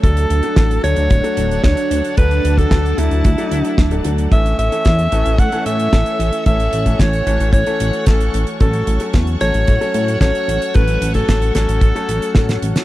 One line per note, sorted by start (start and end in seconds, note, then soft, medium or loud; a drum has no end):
0.00 0.26 D2 loud
0.00 0.40 F#3 medium
0.00 0.40 A3 medium
0.00 4.28 D4 medium
0.00 0.40 D4 medium
0.00 4.28 A4 medium
0.00 0.80 A4 loud
0.00 0.40 A4 medium
0.00 4.28 F#5 medium
0.00 4.28 A5 loud
0.00 kick loud
0.00 closed hi-hat medium
0.17 closed hi-hat medium
0.30 0.41 D2 medium
0.30 closed hi-hat medium
0.43 0.80 F#3 medium
0.43 0.80 A3 medium
0.43 0.80 D4 medium
0.43 0.80 A4 medium
0.43 closed hi-hat medium
0.56 0.79 A1 loud
0.56 kick loud
0.56 snare loud
0.56 closed hi-hat medium
0.71 closed hi-hat medium
0.84 0.95 D2 medium
0.84 1.14 F#3 loud
0.84 1.14 A3 medium
0.84 1.14 D4 medium
0.84 1.14 A4 loud
0.84 1.60 C#5 loud
0.84 closed hi-hat medium
0.96 1.08 D2 medium
0.96 closed hi-hat medium
1.10 1.22 D1 loud
1.10 kick loud
1.10 closed hi-hat medium
1.24 1.61 F#3 medium
1.24 1.61 A3 medium
1.24 1.61 D4 medium
1.24 1.61 A4 loud
1.24 closed hi-hat medium
1.37 1.60 D1 medium
1.37 closed hi-hat medium
1.51 closed hi-hat soft
1.64 1.75 D2 medium
1.64 2.14 F#3 medium
1.64 2.14 A3 medium
1.64 2.14 D4 medium
1.64 2.14 A4 medium
1.64 2.14 C#5 loud
1.64 kick loud
1.64 snare loud
1.64 closed hi-hat medium
1.77 closed hi-hat medium
1.91 2.02 D2 loud
1.91 closed hi-hat medium
2.04 closed hi-hat soft
2.17 2.40 D2 medium
2.17 2.55 F#3 medium
2.17 2.55 A3 medium
2.17 2.55 D4 medium
2.17 2.55 A4 medium
2.17 2.59 B4 loud
2.17 kick loud
2.17 closed hi-hat medium
2.31 closed hi-hat soft
2.44 2.67 D2 medium
2.44 closed hi-hat medium
2.58 2.95 F#3 medium
2.58 2.95 A3 medium
2.58 2.95 D4 medium
2.58 2.95 A4 medium
2.58 3.00 A4 medium
2.58 kick medium
2.58 closed hi-hat soft
2.71 2.94 D2 medium
2.71 kick loud
2.71 snare loud
2.71 closed hi-hat medium
2.86 closed hi-hat soft
2.98 3.09 D2 medium
2.98 3.28 F#3 medium
2.98 3.28 A3 medium
2.98 3.28 D4 medium
2.98 4.05 E4 medium
2.98 3.28 A4 loud
2.98 closed hi-hat loud
3.11 3.23 D2 medium
3.11 closed hi-hat soft
3.25 3.36 D2 medium
3.25 kick loud
3.25 closed hi-hat medium
3.38 3.75 F#3 medium
3.38 3.75 A3 medium
3.38 3.75 D4 medium
3.38 3.75 A4 loud
3.38 closed hi-hat medium
3.51 3.63 D2 loud
3.51 closed hi-hat loud
3.65 closed hi-hat medium
3.78 4.01 D1 medium
3.78 kick loud
3.78 snare loud
3.78 closed hi-hat medium
3.91 4.02 F#3 medium
3.91 4.02 A3 medium
3.91 4.02 D4 medium
3.91 4.02 A4 medium
3.91 closed hi-hat medium
4.04 4.28 D2 medium
4.04 4.29 F#3 medium
4.04 4.29 A3 medium
4.04 4.29 D4 medium
4.04 4.29 A4 medium
4.04 closed hi-hat medium
4.18 closed hi-hat soft
4.32 4.54 A1 loud
4.32 4.69 E3 medium
4.32 4.69 A3 medium
4.32 4.69 C#4 medium
4.32 4.69 A4 medium
4.32 8.57 A4 medium
4.32 8.57 C#5 medium
4.32 6.44 E5 medium
4.32 4.57 E5 loud
4.32 12.84 C#6 medium
4.32 kick loud
4.32 closed hi-hat medium
4.46 closed hi-hat medium
4.59 4.70 A1 medium
4.59 5.40 E5 loud
4.59 closed hi-hat medium
4.72 5.09 E3 medium
4.72 5.09 A3 medium
4.72 5.09 C#4 medium
4.72 5.09 A4 medium
4.72 closed hi-hat medium
4.85 5.08 E2 loud
4.85 kick loud
4.85 snare loud
4.85 closed hi-hat medium
4.99 closed hi-hat medium
5.12 5.24 A1 medium
5.12 5.43 E3 loud
5.12 5.43 A3 medium
5.12 5.43 C#4 medium
5.12 5.43 A4 loud
5.12 closed hi-hat medium
5.26 5.37 A1 medium
5.26 closed hi-hat medium
5.38 5.50 A2 loud
5.38 5.65 F#5 loud
5.38 kick loud
5.38 closed hi-hat medium
5.52 5.89 E3 loud
5.52 5.89 A3 medium
5.52 5.89 C#4 medium
5.52 5.89 A4 loud
5.52 closed hi-hat medium
5.66 5.88 A2 medium
5.66 6.42 E5 loud
5.66 closed hi-hat loud
5.80 closed hi-hat soft
5.93 6.04 A1 loud
5.93 6.43 E3 medium
5.93 6.43 A3 medium
5.93 6.43 C#4 medium
5.93 6.43 A4 medium
5.93 kick loud
5.93 snare loud
5.93 closed hi-hat medium
6.06 closed hi-hat medium
6.19 6.31 A1 loud
6.19 closed hi-hat medium
6.33 closed hi-hat soft
6.46 6.69 A1 medium
6.46 6.83 E3 medium
6.46 6.83 A3 medium
6.46 6.83 C#4 medium
6.46 6.83 A4 medium
6.46 7.01 E5 loud
6.46 8.58 F#5 medium
6.46 kick loud
6.46 closed hi-hat medium
6.60 closed hi-hat medium
6.73 6.96 A1 medium
6.73 closed hi-hat medium
6.86 7.23 E3 medium
6.86 7.23 A3 medium
6.86 7.23 C#4 medium
6.86 7.23 A4 medium
6.86 kick medium
6.86 closed hi-hat medium
7.00 7.22 A1 medium
7.00 7.53 C#5 loud
7.00 kick loud
7.00 snare loud
7.00 closed hi-hat medium
7.13 closed hi-hat soft
7.26 7.38 A1 medium
7.26 7.57 E3 loud
7.26 7.57 A3 medium
7.26 7.57 C#4 medium
7.26 7.57 A4 loud
7.26 closed hi-hat medium
7.40 7.51 A1 medium
7.40 closed hi-hat medium
7.53 7.64 A1 medium
7.53 8.08 C#5 loud
7.53 kick loud
7.53 closed hi-hat medium
7.67 8.04 E3 medium
7.67 8.04 A3 medium
7.67 8.04 C#4 medium
7.67 8.04 A4 loud
7.67 closed hi-hat medium
7.80 7.91 A1 loud
7.80 closed hi-hat loud
7.93 closed hi-hat soft
8.06 8.29 A1 medium
8.06 8.57 E3 medium
8.06 8.57 A3 medium
8.06 8.57 C#4 medium
8.06 8.47 A4 medium
8.06 8.57 A4 medium
8.06 kick loud
8.06 snare loud
8.06 closed hi-hat medium
8.21 closed hi-hat medium
8.34 8.45 A1 medium
8.34 closed hi-hat loud
8.47 closed hi-hat soft
8.60 8.83 A1 loud
8.60 8.97 F#3 medium
8.60 8.97 A3 medium
8.60 8.97 C#4 medium
8.60 8.97 A4 medium
8.60 12.84 A4 medium
8.60 9.10 A4 medium
8.60 12.84 C#5 medium
8.60 12.84 F#5 medium
8.60 kick loud
8.60 closed hi-hat medium
8.73 closed hi-hat medium
8.87 8.99 A1 loud
8.87 closed hi-hat medium
9.00 9.38 F#3 medium
9.00 9.38 A3 medium
9.00 9.38 C#4 medium
9.00 9.38 A4 medium
9.00 closed hi-hat medium
9.13 9.37 E2 loud
9.13 kick loud
9.13 snare loud
9.13 closed hi-hat medium
9.27 closed hi-hat soft
9.41 9.52 A1 medium
9.41 9.71 F#3 medium
9.41 9.71 A3 medium
9.41 9.71 C#4 medium
9.41 9.71 A4 loud
9.41 10.17 C#5 loud
9.41 closed hi-hat medium
9.54 9.65 A1 medium
9.54 closed hi-hat medium
9.67 9.79 A2 loud
9.67 kick loud
9.67 closed hi-hat medium
9.81 10.18 F#3 medium
9.81 10.18 A3 medium
9.81 10.18 C#4 medium
9.81 10.18 A4 loud
9.81 closed hi-hat medium
9.94 10.17 A2 medium
9.94 closed hi-hat medium
10.08 closed hi-hat medium
10.21 10.32 A1 loud
10.21 10.72 F#3 medium
10.21 10.72 A3 medium
10.21 10.72 C#4 medium
10.21 10.72 A4 medium
10.21 10.76 C#5 loud
10.21 kick loud
10.21 snare loud
10.21 closed hi-hat medium
10.35 closed hi-hat medium
10.48 10.59 A1 loud
10.48 closed hi-hat loud
10.62 closed hi-hat medium
10.74 10.98 A1 medium
10.74 11.12 F#3 medium
10.74 11.12 A3 medium
10.74 11.12 C#4 medium
10.74 11.12 A4 medium
10.74 11.15 B4 loud
10.74 kick loud
10.74 closed hi-hat medium
10.88 closed hi-hat medium
11.02 11.24 A1 medium
11.02 closed hi-hat loud
11.14 11.52 F#3 medium
11.14 11.52 A3 medium
11.14 11.52 C#4 medium
11.14 11.52 A4 medium
11.14 kick medium
11.14 closed hi-hat medium
11.29 11.51 A1 medium
11.29 kick loud
11.29 snare loud
11.29 closed hi-hat medium
11.42 closed hi-hat medium
11.55 11.66 A1 medium
11.55 11.86 F#3 medium
11.55 11.86 A3 medium
11.55 11.86 C#4 medium
11.55 11.86 A4 loud
11.55 12.58 A4 medium
11.55 snare medium
11.55 closed hi-hat medium
11.68 11.80 A1 medium
11.68 closed hi-hat medium
11.81 11.93 A1 medium
11.81 kick loud
11.81 closed hi-hat medium
11.95 12.32 F#3 medium
11.95 12.32 A3 medium
11.95 12.32 C#4 medium
11.95 12.32 A4 loud
11.95 closed hi-hat medium
12.09 12.20 A1 loud
12.09 closed hi-hat loud
12.22 closed hi-hat medium
12.35 12.58 A1 medium
12.35 12.84 F#3 medium
12.35 12.84 A3 medium
12.35 12.84 C#4 medium
12.35 12.84 A4 medium
12.35 kick loud
12.35 snare loud
12.35 closed hi-hat medium
12.49 snare medium
12.49 closed hi-hat medium
12.62 12.74 A1 medium
12.62 closed hi-hat loud
12.76 snare medium
12.76 closed hi-hat medium